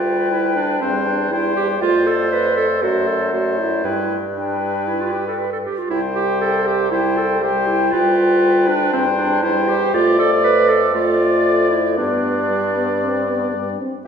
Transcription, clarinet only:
0.00 0.30 F4 medium
0.31 0.55 E4 medium
0.56 0.83 D4 medium
0.81 1.07 C4 medium
1.06 1.33 D4 medium
1.31 1.56 E4 medium
1.57 1.68 G4 medium
1.81 2.08 F4 medium
2.07 2.32 A4 medium
2.32 2.57 B4 medium
2.57 2.84 A4 medium
2.82 3.09 F#4 medium
3.07 3.32 A4 medium
3.32 3.60 F#4 medium
3.58 3.83 E4 medium
3.84 4.17 E4 medium
4.36 4.89 D4 medium
4.87 5.03 E4 medium
5.01 5.14 F4 medium
5.13 5.26 G4 medium
5.27 5.40 A4 soft
5.39 5.52 B4 soft
5.53 5.58 A4 medium
5.64 5.80 G4 medium
5.79 5.90 F4 soft
5.90 6.02 E4 medium
6.16 6.40 G4 medium
6.41 6.68 A4 medium
6.67 6.91 G4 medium
6.92 7.19 E4 medium
7.17 7.44 A4 medium
7.42 7.69 G4 medium
7.67 7.93 E4 medium
7.92 8.69 F4 medium
8.68 8.92 D4 medium
8.93 9.04 C4 medium
9.18 9.45 D4 medium
9.43 9.70 E4 medium
9.69 9.93 G4 medium
9.94 10.19 F4 medium
10.19 10.31 A4 medium
10.44 10.71 B4 medium
10.69 10.94 A4 medium
10.94 11.70 F4 medium
11.71 11.97 E4 medium
11.98 13.76 D4 medium

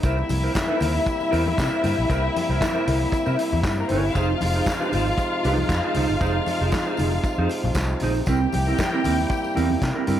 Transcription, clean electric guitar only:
0.04 0.21 E4 medium
0.04 0.18 A#4 medium
0.04 0.18 C5 medium
0.19 muted clean electric guitar stroke soft
0.30 muted clean electric guitar stroke soft
0.43 0.54 E4 medium
0.43 0.54 A#4 medium
0.43 0.54 C5 medium
0.55 muted clean electric guitar stroke soft
0.68 0.79 E4 medium
0.68 0.79 A#4 medium
0.68 0.80 C5 medium
0.80 0.94 E4 medium
0.80 0.94 A#4 medium
0.80 0.93 C5 medium
0.94 muted clean electric guitar stroke soft
1.06 muted clean electric guitar stroke soft
1.20 muted clean electric guitar stroke medium
1.31 1.48 E4 medium
1.31 1.45 A#4 loud
1.31 1.44 C5 loud
1.46 muted clean electric guitar stroke soft
1.58 muted clean electric guitar stroke soft
1.72 1.82 E4 medium
1.72 1.83 A#4 medium
1.72 1.84 C5 medium
1.83 2.00 E4 medium
1.83 1.97 A#4 medium
1.83 1.96 C5 medium
1.98 muted clean electric guitar stroke soft
2.09 2.26 E4 medium
2.09 2.24 A#4 loud
2.09 2.23 C5 medium
2.25 muted clean electric guitar stroke medium
2.37 muted clean electric guitar stroke soft
2.50 2.60 E4 medium
2.50 2.61 A#4 medium
2.50 2.61 C5 medium
2.62 muted clean electric guitar stroke soft
2.74 2.85 E4 medium
2.74 2.86 A#4 medium
2.74 2.87 C5 medium
2.87 3.00 E4 medium
2.87 3.00 A#4 medium
2.87 2.99 C5 medium
3.01 muted clean electric guitar stroke soft
3.13 muted clean electric guitar stroke soft
3.26 3.37 E4 medium
3.26 3.38 A#4 medium
3.26 3.38 C5 medium
3.38 muted clean electric guitar stroke soft
3.52 muted clean electric guitar stroke soft
3.64 muted clean electric guitar stroke soft
3.78 muted clean electric guitar stroke soft
3.91 4.10 E4 medium
3.91 4.04 A#4 medium
3.91 4.03 C5 medium
4.04 muted clean electric guitar stroke soft
4.16 4.33 D#4 medium
4.16 4.30 G#4 loud
4.16 4.29 C5 medium
4.30 muted clean electric guitar stroke soft
4.42 muted clean electric guitar stroke soft
4.55 4.67 D#4 soft
4.55 4.67 G#4 medium
4.55 4.67 C5 medium
4.68 muted clean electric guitar stroke soft
4.80 4.91 D#4 medium
4.80 4.92 G#4 medium
4.80 4.92 C5 medium
4.92 5.06 D#4 medium
4.92 5.06 G#4 medium
4.92 5.05 C5 medium
5.06 muted clean electric guitar stroke soft
5.19 muted clean electric guitar stroke soft
5.32 muted clean electric guitar stroke soft
5.44 5.64 D#4 medium
5.44 5.58 G#4 medium
5.44 5.57 C5 medium
5.58 muted clean electric guitar stroke soft
5.84 5.95 D#4 medium
5.84 5.96 G#4 medium
5.84 5.96 C5 medium
5.96 6.13 D#4 medium
5.96 6.09 G#4 medium
5.96 6.08 C5 medium
6.09 muted clean electric guitar stroke soft
6.21 6.38 D#4 medium
6.21 6.35 G#4 medium
6.21 6.34 C5 medium
6.35 muted clean electric guitar stroke soft
6.47 muted clean electric guitar stroke soft
6.61 6.72 D#4 medium
6.61 6.73 G#4 medium
6.61 6.73 C5 medium
6.74 muted clean electric guitar stroke soft
6.87 6.97 D#4 medium
6.87 6.98 G#4 medium
6.87 6.98 C5 medium
6.99 7.12 D#4 medium
6.99 7.11 G#4 medium
6.99 7.11 C5 medium
7.12 muted clean electric guitar stroke soft
7.25 muted clean electric guitar stroke soft
7.38 7.49 D#4 medium
7.38 7.50 G#4 medium
7.38 7.50 C5 medium
7.51 muted clean electric guitar stroke soft
7.64 muted clean electric guitar stroke soft
7.77 muted clean electric guitar stroke soft
7.91 muted clean electric guitar stroke soft
8.02 8.19 D#4 medium
8.02 8.16 G#4 medium
8.02 8.15 C5 loud
8.16 muted clean electric guitar stroke soft
8.28 8.45 C4 medium
8.28 8.41 E4 medium
8.28 8.40 A#4 medium
8.42 muted clean electric guitar stroke soft
8.53 muted clean electric guitar stroke soft
8.67 8.78 C4 medium
8.67 8.78 E4 medium
8.67 8.79 A#4 medium
8.79 muted clean electric guitar stroke soft
8.92 9.03 C4 medium
8.92 9.03 E4 medium
8.92 9.04 A#4 medium
9.04 9.18 C4 medium
9.04 9.18 E4 medium
9.04 9.17 A#4 medium
9.18 muted clean electric guitar stroke soft
9.31 muted clean electric guitar stroke soft
9.44 muted clean electric guitar stroke soft
9.55 9.73 C4 medium
9.55 9.70 E4 medium
9.55 9.69 A#4 medium
9.71 muted clean electric guitar stroke soft
9.82 muted clean electric guitar stroke soft
9.95 10.06 C4 soft
9.95 10.06 E4 medium
9.95 10.07 A#4 medium
10.07 10.20 C4 medium
10.07 10.20 E4 medium
10.07 10.19 A#4 medium

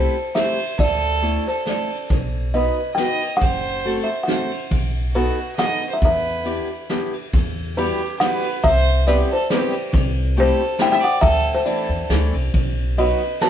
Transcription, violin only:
0.00 0.32 A4 medium
0.36 0.76 C5 medium
0.80 1.42 A4 loud
1.49 1.67 A4 medium
1.67 2.08 A4 medium
2.55 2.94 B4 medium
2.95 3.37 D#5 medium
3.38 4.02 C5 loud
4.03 4.24 C5 medium
4.24 4.66 C5 medium
5.12 5.54 F#4 medium
5.56 5.88 D#5 medium
5.90 5.99 C5 medium
5.99 6.84 B4 loud
7.76 8.17 G4 medium
8.20 8.61 B4 medium
8.65 9.05 C5 loud
9.08 9.18 B4 medium
9.32 9.50 A4 medium
9.53 9.92 G4 medium
10.38 10.77 A4 medium
10.81 10.85 E5 medium
10.85 10.90 E5 medium
10.91 11.01 E5 loud
11.01 11.21 D5 medium
11.23 11.54 A4 loud
11.56 11.65 A4 medium
11.66 12.07 A4 medium
12.99 13.38 B4 medium
13.42 13.49 F#5 loud

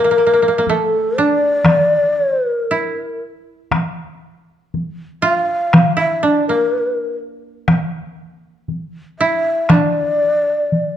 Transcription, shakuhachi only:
0.00 0.71 A#4 medium
0.69 1.21 A4 medium
1.20 2.18 D5 medium
2.18 2.31 C#5 medium
2.31 2.43 C5 medium
2.43 2.56 B4 medium
2.56 3.22 A#4 medium
5.23 5.93 F5 medium
5.98 6.25 E5 medium
6.24 6.47 D5 medium
6.48 7.16 A#4 medium
9.19 9.73 E5 medium
9.71 10.97 D5 medium

